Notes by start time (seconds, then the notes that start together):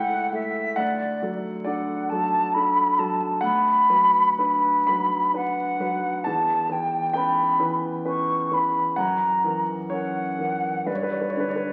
Already playing: C#2 A3 E4 A4 F#5 G5 A5
0.32 A3 A4 E5
0.76 D2 D5 F#5
1.22 F#3 A4
1.64 D4 A4 D5 F#5
2.10 F#3 A4 A5
2.54 D4 A4 B5
2.99 F#3 A4 A5
3.41 D2 F#5 B5
3.90 F#3 B4
4.38 D4 B4 B5
4.87 F#3 B4 B5
5.34 D4 B4 F#5
5.80 F#3 B4
6.24 E2 A5
6.69 E3 B4 G5
7.13 C#4 B4 G5 B5
7.59 E3 B4
8.05 C#4 B4 C#6
8.51 E3 B4 B5
8.96 F#2 F#5 A#5
9.44 E3 A#4
9.90 C#4 A#4 C#5 F#5
10.38 E3 A#4
10.86 G2 B4 D5
10.95 C#5
11.03 B4
11.11 C#5
11.21 B4
11.30 C#5
11.37 D3 B4
11.49 C#5
11.56 B4